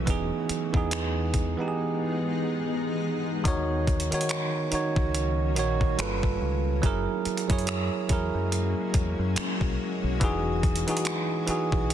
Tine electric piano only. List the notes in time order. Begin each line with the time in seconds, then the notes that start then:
0.06 E3 B3 D#4
0.10 G#4
0.73 E3 B3 D#4
0.77 G#4
1.57 E3 B3 D#4
1.62 G4
1.68 G#4
3.44 D#3 D#4 F#4
3.48 C#5
4.11 D#3 D#4 F#4
4.15 C#5
4.71 D#3 D#4 F#4
4.75 C#5
5.55 D#3 D#4 F#4 C#5
5.98 G3 F4 A4
6.02 B4
6.82 F#3 E4 G#4
6.86 A#4
7.48 F#3 E4 G#4
7.52 C#5
8.09 F#3 E4 G#4
8.13 A#4
10.20 E3 D#4 F#4
10.24 G#4
10.87 E3 D#4 F#4
10.91 G#4
11.47 E3 D#4 F#4
11.51 G#4